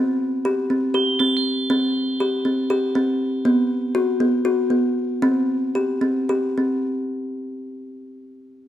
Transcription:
Already playing: kalimba C4
0.45 kalimba G4
0.70 kalimba C4
0.94 kalimba G4, crotales G7
1.19 kalimba C4, crotales A7
1.37 crotales C8
1.70 kalimba C4
2.20 kalimba G4
2.45 kalimba C4
2.70 kalimba G4
2.95 kalimba C4
3.45 kalimba B3
3.95 kalimba F#4
4.20 kalimba B3
4.45 kalimba F#4
4.70 kalimba B3
5.22 kalimba C4
5.75 kalimba G4
6.01 kalimba C4
6.29 kalimba G4
6.58 kalimba C4

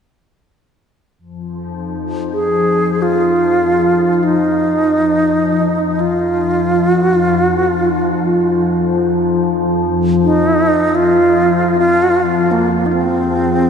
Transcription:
1.19 ambient pad F2 F3
1.60 glass harmonica D#4
2.33 alto flute G#4
3.02 alto flute F4
4.13 alto flute F4
4.24 alto flute D#4
6.00 alto flute F4
6.40 glass harmonica F4
6.94 alto flute F#4
7.19 alto flute F4
7.47 alto flute F#4
7.72 alto flute F4
10.24 alto flute D#4
10.95 alto flute F4
11.79 alto flute F4
12.51 alto flute A#3
12.86 alto flute D#4
12.93 alto flute C4
13.13 glass harmonica G#4

